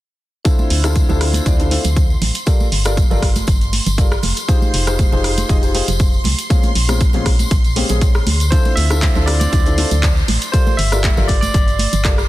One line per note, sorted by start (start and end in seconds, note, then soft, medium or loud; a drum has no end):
0.45 0.80 C4 medium
0.45 0.80 D4 medium
0.45 0.81 E4 medium
0.45 0.81 F4 medium
0.45 0.81 A4 loud
0.45 12.29 C6 medium
0.45 kick loud
0.45 closed hi-hat medium
0.45 tambourine medium
0.59 tambourine soft
0.59 high conga medium
0.70 1.03 D2 medium
0.70 open hi-hat loud
0.83 1.06 C4 medium
0.83 1.06 D4 medium
0.83 1.06 E4 medium
0.83 1.06 F4 medium
0.83 1.06 A4 medium
0.83 cross-stick medium
0.83 closed hi-hat medium
0.83 tambourine medium
0.95 kick loud
0.95 closed hi-hat medium
0.95 tambourine medium
0.95 high conga medium
1.09 1.40 D2 medium
1.09 1.43 C4 medium
1.09 1.43 D4 medium
1.09 1.43 E4 medium
1.09 1.43 F4 medium
1.09 1.43 A4 loud
1.09 tambourine soft
1.09 low conga medium
1.21 cross-stick medium
1.21 open hi-hat medium
1.33 closed hi-hat medium
1.33 tambourine medium
1.33 high conga medium
1.46 1.78 D2 loud
1.46 1.56 C4 medium
1.46 1.56 D4 medium
1.46 1.56 E4 medium
1.46 1.56 F4 medium
1.46 1.57 D5 loud
1.46 kick loud
1.46 closed hi-hat medium
1.46 tambourine medium
1.59 1.69 C4 medium
1.59 1.69 D4 medium
1.59 1.70 E4 medium
1.59 1.70 F4 medium
1.59 1.70 A4 medium
1.59 closed hi-hat soft
1.59 tambourine soft
1.71 1.83 C4 medium
1.71 1.83 D4 medium
1.71 1.83 E4 medium
1.71 1.83 F4 medium
1.71 1.83 A4 medium
1.71 open hi-hat loud
1.71 high conga medium
1.84 2.16 D2 medium
1.84 closed hi-hat medium
1.84 tambourine medium
1.84 low conga medium
1.96 kick loud
1.96 closed hi-hat medium
1.96 tambourine medium
2.10 tambourine soft
2.22 2.31 A1 medium
2.22 open hi-hat medium
2.22 high conga medium
2.22 low conga medium
2.35 closed hi-hat medium
2.35 tambourine medium
2.46 2.64 F4 medium
2.46 2.65 G4 medium
2.46 2.65 A4 medium
2.46 2.65 A#4 medium
2.46 2.65 D5 medium
2.46 kick loud
2.46 closed hi-hat medium
2.46 tambourine medium
2.60 tambourine soft
2.60 high conga medium
2.72 3.04 G1 medium
2.72 open hi-hat loud
2.85 2.95 F4 medium
2.85 2.96 G4 medium
2.85 2.96 A4 medium
2.85 2.96 A#4 medium
2.85 2.96 D5 medium
2.85 cross-stick medium
2.85 closed hi-hat soft
2.85 tambourine medium
2.97 kick loud
2.97 closed hi-hat medium
2.97 tambourine medium
2.97 high conga medium
3.10 3.42 G1 medium
3.10 3.27 F4 medium
3.10 3.27 G4 medium
3.10 3.28 A4 medium
3.10 3.28 A#4 medium
3.10 3.28 D5 loud
3.10 tambourine soft
3.10 low conga medium
3.22 kick medium
3.22 cross-stick medium
3.22 open hi-hat medium
3.36 closed hi-hat medium
3.36 tambourine medium
3.36 high conga medium
3.47 3.80 G1 loud
3.47 kick loud
3.47 closed hi-hat medium
3.47 tambourine medium
3.61 closed hi-hat soft
3.61 tambourine soft
3.73 open hi-hat loud
3.73 high conga medium
3.86 4.18 G1 medium
3.86 closed hi-hat medium
3.86 tambourine medium
3.86 low conga medium
3.98 4.09 F4 medium
3.98 4.10 G4 medium
3.98 4.10 A4 medium
3.98 4.10 A#4 medium
3.98 4.10 D5 medium
3.98 kick loud
3.98 closed hi-hat medium
3.98 tambourine medium
4.12 cross-stick medium
4.12 tambourine soft
4.23 4.33 F1 medium
4.23 open hi-hat medium
4.23 high conga medium
4.23 low conga medium
4.37 closed hi-hat medium
4.37 tambourine medium
4.48 4.84 D#4 medium
4.48 4.84 F4 medium
4.48 4.84 G4 medium
4.48 4.84 G#4 medium
4.48 4.84 C5 loud
4.48 kick loud
4.48 closed hi-hat medium
4.48 tambourine medium
4.62 tambourine soft
4.62 high conga medium
4.74 5.06 F1 medium
4.74 open hi-hat loud
4.87 5.09 D#4 medium
4.87 5.09 F4 medium
4.87 5.09 G4 medium
4.87 5.09 G#4 medium
4.87 5.10 C5 medium
4.87 cross-stick medium
4.87 closed hi-hat soft
4.87 tambourine medium
4.99 kick loud
4.99 closed hi-hat medium
4.99 tambourine medium
4.99 high conga medium
5.12 5.44 F1 medium
5.12 5.46 D#4 medium
5.12 5.46 F4 medium
5.12 5.47 G4 medium
5.12 5.47 G#4 medium
5.12 5.47 C5 loud
5.12 tambourine soft
5.12 low conga medium
5.24 cross-stick medium
5.24 open hi-hat loud
5.38 closed hi-hat soft
5.38 tambourine medium
5.38 high conga loud
5.49 5.82 F1 loud
5.49 5.59 D#4 medium
5.49 5.60 F4 medium
5.49 5.60 G4 medium
5.49 5.60 G#4 medium
5.49 5.60 D#5 loud
5.49 kick loud
5.49 closed hi-hat medium
5.49 tambourine medium
5.62 5.73 D#4 medium
5.62 5.73 F4 medium
5.62 5.73 G4 medium
5.62 5.73 G#4 medium
5.62 5.73 C5 medium
5.62 closed hi-hat soft
5.62 tambourine soft
5.74 5.86 D#4 medium
5.74 5.86 F4 medium
5.74 5.86 G4 medium
5.74 5.86 G#4 medium
5.74 5.86 C5 medium
5.74 open hi-hat loud
5.74 high conga medium
5.88 6.19 F1 medium
5.88 closed hi-hat soft
5.88 tambourine medium
5.88 low conga medium
6.00 kick loud
6.00 closed hi-hat medium
6.00 tambourine medium
6.14 tambourine soft
6.24 6.34 C2 medium
6.24 open hi-hat loud
6.24 high conga medium
6.24 low conga medium
6.39 closed hi-hat medium
6.39 tambourine medium
6.50 6.68 G#3 medium
6.50 6.68 A#3 medium
6.50 6.68 C4 medium
6.50 6.68 C#4 medium
6.50 6.68 F4 medium
6.50 kick loud
6.50 closed hi-hat medium
6.50 tambourine medium
6.63 closed hi-hat soft
6.63 tambourine soft
6.63 high conga medium
6.75 7.08 A#1 loud
6.75 open hi-hat loud
6.88 6.99 G#3 medium
6.88 6.99 A#3 medium
6.88 6.99 C4 medium
6.88 6.99 C#4 medium
6.88 6.99 F4 medium
6.88 cross-stick medium
6.88 closed hi-hat soft
6.88 tambourine medium
7.01 kick loud
7.01 closed hi-hat medium
7.01 tambourine medium
7.01 high conga medium
7.13 7.45 A#1 loud
7.13 7.31 G#3 medium
7.13 7.31 A#3 medium
7.13 7.31 C4 medium
7.13 7.31 C#4 medium
7.13 7.31 F4 loud
7.13 closed hi-hat soft
7.13 tambourine soft
7.13 low conga medium
7.26 kick medium
7.26 cross-stick medium
7.26 open hi-hat loud
7.39 closed hi-hat soft
7.39 tambourine medium
7.39 high conga medium
7.51 7.83 A#1 loud
7.51 kick loud
7.51 closed hi-hat medium
7.51 tambourine medium
7.64 closed hi-hat soft
7.64 tambourine soft
7.76 7.88 G#3 medium
7.76 7.88 A#3 medium
7.76 7.88 C4 medium
7.76 7.88 C#4 medium
7.76 7.88 G4 medium
7.76 open hi-hat loud
7.76 high conga medium
7.89 8.21 A#1 loud
7.89 8.06 G#3 medium
7.89 8.06 A#3 medium
7.89 8.07 C4 medium
7.89 8.07 C#4 medium
7.89 8.07 G#4 medium
7.89 closed hi-hat soft
7.89 tambourine medium
7.89 low conga medium
8.01 kick loud
8.01 closed hi-hat medium
8.01 tambourine medium
8.15 cross-stick medium
8.15 tambourine soft
8.27 8.59 D2 medium
8.27 open hi-hat medium
8.27 high conga medium
8.27 low conga medium
8.40 closed hi-hat soft
8.40 tambourine medium
8.51 8.87 C4 medium
8.51 8.87 D4 medium
8.51 8.87 E4 medium
8.51 8.88 F4 medium
8.51 8.88 A4 loud
8.51 8.75 C5 loud
8.51 kick loud
8.51 closed hi-hat medium
8.51 tambourine medium
8.65 closed hi-hat soft
8.65 tambourine soft
8.65 high bongo medium
8.65 high conga medium
8.76 9.09 D2 loud
8.76 9.28 E5 loud
8.76 closed hi-hat medium
8.76 open hi-hat loud
8.90 9.12 C4 medium
8.90 9.12 D4 medium
8.90 9.13 E4 medium
8.90 9.13 F4 medium
8.90 9.13 A4 medium
8.90 cross-stick medium
8.90 tambourine medium
8.90 high bongo medium
9.02 kick loud
9.02 snare loud
9.02 clap loud
9.02 closed hi-hat medium
9.02 high conga medium
9.15 9.47 D2 loud
9.15 9.50 C4 medium
9.15 9.50 D4 medium
9.15 9.50 E4 medium
9.15 9.50 F4 medium
9.15 9.50 A4 loud
9.15 tambourine soft
9.15 low conga medium
9.26 9.38 D5 loud
9.26 cross-stick medium
9.26 closed hi-hat medium
9.26 open hi-hat medium
9.26 high bongo soft
9.40 10.12 D5 medium
9.40 closed hi-hat soft
9.40 tambourine medium
9.40 high conga loud
9.52 9.85 D2 loud
9.52 9.63 C4 medium
9.52 9.63 D4 medium
9.52 9.63 E4 medium
9.52 9.63 F4 medium
9.52 9.63 D5 loud
9.52 kick loud
9.52 closed hi-hat medium
9.52 tambourine medium
9.65 9.76 C4 medium
9.65 9.76 D4 medium
9.65 9.76 E4 medium
9.65 9.76 F4 medium
9.65 9.77 A4 medium
9.65 closed hi-hat soft
9.65 tambourine soft
9.77 9.89 C4 medium
9.77 9.89 D4 medium
9.77 9.90 E4 medium
9.77 9.90 F4 medium
9.77 9.90 A4 medium
9.77 closed hi-hat medium
9.77 open hi-hat loud
9.77 high bongo soft
9.77 high conga medium
9.91 10.23 D2 medium
9.91 closed hi-hat soft
9.91 tambourine medium
9.91 low conga medium
10.03 kick loud
10.03 snare loud
10.03 clap loud
10.03 closed hi-hat medium
10.03 tambourine medium
10.17 tambourine soft
10.28 10.38 A1 medium
10.28 closed hi-hat medium
10.28 open hi-hat medium
10.28 high conga medium
10.28 low conga medium
10.42 closed hi-hat medium
10.42 closed hi-hat soft
10.42 tambourine medium
10.52 10.71 F4 medium
10.52 10.71 G4 medium
10.52 10.71 A4 medium
10.52 10.72 A#4 medium
10.52 10.79 C5 loud
10.52 10.72 D5 medium
10.52 kick loud
10.52 closed hi-hat medium
10.52 tambourine medium
10.67 tambourine soft
10.67 high bongo medium
10.67 high conga medium
10.77 11.11 G1 loud
10.77 11.30 E5 loud
10.77 closed hi-hat medium
10.77 open hi-hat loud
10.92 11.02 F4 medium
10.92 11.02 G4 medium
10.92 11.02 A4 medium
10.92 11.02 A#4 medium
10.92 11.03 D5 medium
10.92 cross-stick medium
10.92 closed hi-hat medium
10.92 tambourine medium
10.92 high bongo medium
11.04 kick loud
11.04 snare loud
11.04 clap loud
11.04 closed hi-hat medium
11.04 high conga medium
11.17 11.49 G1 loud
11.17 11.34 F4 loud
11.17 11.34 G4 medium
11.17 11.34 A4 medium
11.17 11.34 A#4 medium
11.17 11.34 D5 loud
11.17 tambourine soft
11.17 low conga medium
11.28 11.40 D5 loud
11.28 kick medium
11.28 closed hi-hat medium
11.28 open hi-hat medium
11.28 high bongo medium
11.41 12.14 D5 loud
11.41 closed hi-hat medium
11.41 tambourine medium
11.41 high conga medium
11.54 11.87 G1 loud
11.54 kick loud
11.54 closed hi-hat medium
11.54 tambourine medium
11.68 closed hi-hat soft
11.68 tambourine soft
11.79 closed hi-hat medium
11.79 open hi-hat loud
11.79 high conga medium
11.93 12.24 G1 medium
11.93 closed hi-hat soft
11.93 tambourine medium
11.93 low conga medium
12.04 12.16 F4 medium
12.04 12.16 G4 medium
12.04 12.16 A4 medium
12.04 12.16 A#4 medium
12.04 12.17 D5 medium
12.04 kick loud
12.04 snare loud
12.04 clap loud
12.04 closed hi-hat medium
12.04 tambourine medium
12.18 cross-stick medium
12.18 tambourine soft